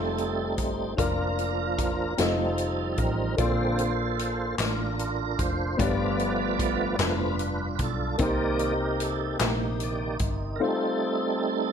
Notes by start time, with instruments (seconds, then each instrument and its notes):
Already playing: fingered electric bass F1, tonewheel organ G3 A3 C4 D#4 A4, grand piano A3 C4 D#4 F4 C5
0.18 closed hi-hat
0.58 fingered electric bass G1, kick, closed hi-hat
0.97 fingered electric bass F1, tonewheel organ F3 A#3 D4 F4 A#4, grand piano D4 F4 A#4, kick, closed hi-hat
1.39 closed hi-hat
1.78 kick, closed hi-hat
2.18 fingered electric bass F1, tonewheel organ F3 G3 C4 D#4 A4, grand piano C4 D#4 F4 A4 D#5, snare, closed hi-hat
2.58 closed hi-hat
2.92 tonewheel organ A4
2.98 fingered electric bass A1, tonewheel organ A#4, kick, closed hi-hat
3.37 fingered electric bass A#1, grand piano A#2 A#3 D4 F4 A4 D5, tonewheel organ D3 A#3 C4 F4 A4 C5, kick, closed hi-hat
3.79 closed hi-hat
4.19 closed hi-hat
4.58 fingered electric bass A1, tonewheel organ D4 F4 A#4, snare, clap, closed hi-hat
4.99 closed hi-hat
5.39 fingered electric bass F1, tonewheel organ C5, kick, closed hi-hat
5.77 fingered electric bass G1, grand piano G2 B3 D4 F4 G4 C#5, tonewheel organ F3 A3 B3 B4 D5, kick, closed hi-hat
5.81 tonewheel organ F4
5.87 grand piano D5
6.20 closed hi-hat
6.59 kick, closed hi-hat
6.99 fingered electric bass F1, tonewheel organ F3 A3 B3 D4 F4 B4, snare, clap, closed hi-hat
7.39 closed hi-hat
7.75 tonewheel organ B4, closed hi-hat
7.79 fingered electric bass B1, tonewheel organ A4, kick
8.18 fingered electric bass C2, grand piano C3 A#3 C4 D#4 G4 C5, tonewheel organ D#3 A#3, kick, closed hi-hat
8.22 tonewheel organ D#4 G4 A#4 D5
8.59 closed hi-hat
9.00 tonewheel organ A4, closed hi-hat
9.40 fingered electric bass A#1, tonewheel organ A#3 D#4 G4, snare, clap, closed hi-hat
9.80 tonewheel organ D#3 A#3 D5, closed hi-hat
10.19 fingered electric bass G1, kick, closed hi-hat
10.56 grand piano A3 C4, tonewheel organ A#4
10.60 tonewheel organ G3 A3 C4 A4, grand piano D#4 F4 C5
10.65 tonewheel organ D#4